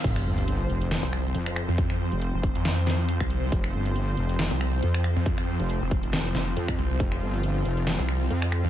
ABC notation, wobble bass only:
X:1
M:4/4
L:1/16
Q:"Swing 16ths" 1/4=138
K:Cphr
V:1 name="Wobble bass" clef=bass
F,,,2 G,,,4 F,,,3 z3 F,,3 z | z3 F,,,2 z8 z3 | F,,,2 G,,,4 F,,,3 z3 F,,3 z | z3 F,,,2 z2 F,,,3 z2 F,,2 z2 |
F,,,2 G,,,4 F,,,3 z3 F,,3 z |]